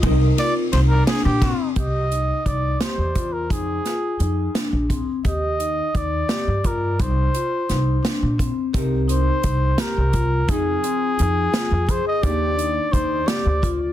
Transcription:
<<
  \new Staff \with { instrumentName = "Trumpet" } { \time 5/8 \key c \minor \tempo 4 = 86 r8 d''8 c''16 bes'16 aes'16 g'8. | ees''4 d''8 c''8. bes'16 | aes'4. r4 | ees''4 d''4 bes'8 |
c''2 r8 | r8 c''4 bes'4 | aes'2 c''16 ees''16 | d''4 c''8 d''8 r8 | }
  \new Staff \with { instrumentName = "Vibraphone" } { \time 5/8 \key c \minor ees'8 f'8 ees'8 d'8 c'8 | g'8 ees'8 ees'8 g'8 f'8 | ees'8 f'8 ees'8 d'8 c'8 | g'8 ees'8 ees'8 g'8 f'8 |
ees'8 f'8 ees'8 d'8 c'8 | g'8 ees'8 ees'8 g'8 f'8 | ees'8 c'8 ees'8 f'8 aes'8 | g'8 ees'8 ees'8 g'8 f'8 | }
  \new Staff \with { instrumentName = "Hollow-body jazz guitar" } { \time 5/8 \key c \minor <c c' ees' bes'>2~ <c c' ees' bes'>8 | r2 r8 | r2 r8 | r2 r8 |
r2 r8 | <c c' ees' bes'>2~ <c c' ees' bes'>8 | <f c' ees' aes'>2~ <f c' ees' aes'>8 | <bes d' ees' g'>2~ <bes d' ees' g'>8 | }
  \new Staff \with { instrumentName = "Upright bass" } { \clef bass \time 5/8 \key c \minor c,8 r8 c,8 r16 bes,8 r16 | c,4 c,8 r16 e,8. | f,8 r8 f,8 r16 bes,,8 r16 | ees,4 ees,8 r16 g,8. |
c,8 r8 c,8 r16 bes,8 r16 | c,4 c,8 r16 c,8. | f,8 r8 f,8 r16 f,8 r16 | ees,4 ees,8 r16 d,8. | }
  \new DrumStaff \with { instrumentName = "Drums" } \drummode { \time 5/8 <bd cymr>8 <cymr sn>8 <cymr sn>8 <cymr sn>8 <bd cymr sn>8 | <hh bd>8 hh8 <hh bd>8 <hh sn>8 <hh bd>8 | <hh bd>8 <hh sn>8 hh8 <hh sn>8 <hh bd>8 | <hh bd>8 hh8 <hh bd>8 <hh sn>8 <hh bd>8 |
<hh bd>8 hh8 <hh sn>8 <hh sn>8 <hh bd>8 | <hh bd>8 hh8 <hh bd>8 <hh sn>8 <hh bd>8 | <hh bd>8 hh8 hh8 <hh sn>8 <hh bd>8 | <hh bd>8 hh8 <hh bd>8 <hh sn>8 <hh bd>8 | }
>>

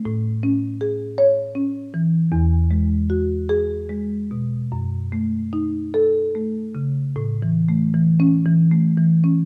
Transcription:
<<
  \new Staff \with { instrumentName = "Marimba" } { \time 3/4 \key fis \dorian \tempo 4 = 77 r4. cis''4 r8 | r4. gis'4 r8 | r4. a'4 r8 | \key a \major r4 \tuplet 3/2 { r8 cis'4 } r4 | }
  \new Staff \with { instrumentName = "Marimba" } { \clef bass \time 3/4 \key fis \dorian a,8 cis'8 gis'4 cis'8 e8 | e,8 gis8 fis'4 gis8 b,8 | fis,8 a8 dis'4 a8 cis8 | \key a \major \tuplet 3/2 { a,8 e8 a8 e4 e8 a8 e8 cis'8 } | }
>>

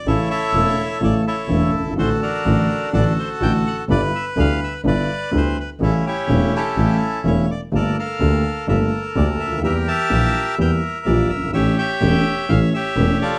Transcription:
<<
  \new Staff \with { instrumentName = "Bandoneon" } { \time 4/4 \key a \phrygian \tempo 4 = 126 << { cis''8 e''4. d''8 cis''4 r8 | c''8 bes'4. d''8 c''8 g''8 fis''8 | d''8 e''8 f''8 e''8 d''4 c''8 b'8 | a'8 cis''4 a'4. cis''8 d''8 |
d''8 f''4. e''8 r8 d''8 e''8 | e''8 a''4. g''8 r8 d''8 e''8 | e''8 g''4. f''8 e''4 d''8 | } \\ { <e' a'>8 <a' cis''>4. a'8 <e' a'>4. | <fis' a'>8 <d' fis'>4. <fis' a'>2 | b'2 b'2 | <cis' e'>8 <e' g'>4 <cis' e'>2 r8 |
<a' bes'>8 <a' bes'>4. <a' bes'>2 | <g' bes'>8 e''4. <bes' e''>2 | <g' cis''>8 <cis'' e''>4. cis''8 <g' cis''>4 <f' a'>8 | } >> }
  \new Staff \with { instrumentName = "Grand piano" } { \clef bass \time 4/4 \key a \phrygian <a,, a, cis e a e'>8 r8 <e,, e, cis e a e'>8 r8 <a,, a, cis e a e'>8 r8 <e,, e, cis e a e'>8 r32 fis,,32 g,,32 gis,,32 | <a,, a, d fis a fis'>8 r8 <a,, a, d fis a fis'>8 r8 <a,, a, d fis a fis'>8 r8 <a,, a, d fis a fis'>8 r8 | <g,, g, d g b e'>8 r8 <d, d g b e'>8 r8 <g,, g, d g b e'>8 r8 <d, d g b e'>8 r8 | <a,, a, cis g a e'>8 r8 <e,, e, cis g a e'>8 r8 <a,, a, cis g a e'>8 r8 <e,, e, cis g a e'>8 r8 |
<g,, g, d a bes g'>8 r8 <d, d a bes g'>8 r8 <g,, g, d a bes g'>8 r8 <d, d a bes g'>8 r32 cis,32 d,32 ees,32 | <e, e g bes g'>8 r8 <bes,, bes, e g bes g'>8 r8 <e, e g bes g'>8 r8 <bes,, bes, e g bes g'>8 r32 fis,,32 g,,32 gis,,32 | <a,, a, e a cis' g'>8 r8 <e,, e, e a cis' g'>8 r8 <a,, a, e a cis' g'>8 r8 <e,, e, e a cis' g'>8 r8 | }
  \new Staff \with { instrumentName = "Double bass" } { \clef bass \time 4/4 \key a \phrygian a,,8 r8 e,,8 r8 a,,8 r8 e,,8 g,,8 | a,,8 r8 a,,8 r8 a,,8 r8 a,,8 r8 | g,,8 r8 d,8 r8 g,,8 r8 d,8 r8 | a,,8 r8 e,,8 r8 a,,8 r8 e,,8 r8 |
g,,8 r8 d,8 r8 g,,8 r8 d,8 d,8 | e,8 r8 bes,,8 r8 e,8 r8 bes,,8 g,,8 | a,,8 r8 e,,8 r8 a,,8 r8 e,,8 r8 | }
>>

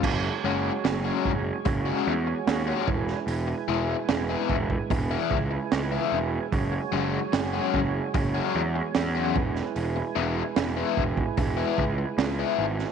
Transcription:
<<
  \new Staff \with { instrumentName = "Tonewheel organ" } { \time 4/4 \key e \lydian \tempo 4 = 74 << { <gis gis''>1~ | <gis gis''>1~ | <gis gis''>1~ | <gis gis''>1 | } \\ { <fis' cis''>2.~ <fis' cis''>8 <e' b'>8~ | <e' b'>1 | <fis' cis''>2.~ <fis' cis''>8 <e' b'>8~ | <e' b'>1 | } >> }
  \new Staff \with { instrumentName = "Overdriven electric guitar" } { \time 4/4 \key e \lydian r8 <fis gis cis' fis'>16 r8 <fis gis cis' fis'>16 r8. <fis gis cis' fis'>16 r8. <fis gis cis' fis'>16 r8 | r8 <e gis b e'>16 r8 <e gis b e'>16 r8. <e gis b e'>16 r8. <e gis b e'>16 r8 | r8 <fis gis cis' fis'>16 r8 <fis gis cis' fis'>16 r8. <fis gis cis' fis'>16 r8. <fis gis cis' fis'>16 r8 | r8 <e gis b e'>16 r8 <e gis b e'>16 r8. <e gis b e'>16 r8. <e gis b e'>16 r8 | }
  \new Staff \with { instrumentName = "Picked electric bass" } { \clef bass \time 4/4 \key e \lydian fis,,8 fis,,8 fis,,8 fis,,8 fis,,8 e,8 dis,8 e,,8 | e,,8 e,,8 e,,8 e,,8 e,,8 cis,8 cis,8 e,,8 | fis,,8 fis,,8 fis,,8 fis,,8 fis,,8 e,8 e,8 e,,8 | e,,8 e,,8 e,,8 e,,8 e,,8 cis,8 cis,8 gis,,8 | }
  \new DrumStaff \with { instrumentName = "Drums" } \drummode { \time 4/4 <cymc bd>4 <hho sn>8 bd8 <hho bd>4 <hho sn>8 bd16 sn16 | hho4 <hho sn>8 bd16 bd16 <hho bd>8 bd8 <hho sn>4 | <hho bd>4 <hho sn>8 bd8 <hho bd>4 <hho sn>8 bd16 sn16 | hho4 <hho sn>8 bd16 bd16 <hho bd>8 bd8 <hho sn>8. sn16 | }
>>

